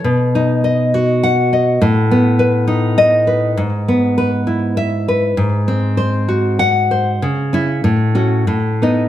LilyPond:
\new Staff \with { instrumentName = "Nylon-string guitar" } { \time 3/4 \key b \mixolydian \tempo 4 = 100 << { r2 fis''4 | r2 dis''4 | r2 e''4 | r2 fis''4 |
r8 e'8 r8 fis'8 r8 dis'8 | } \\ { b,8 dis'8 dis''8 fis'4 dis''8 | a,8 b8 b'8 dis'4 b'8 | gis,8 b8 b'8 e'4 b'8 | gis,8 bis8 bis'8 fis'4 bis'8 |
cis8 cis'8 a,8 cis'8 a,8 b8 | } >> }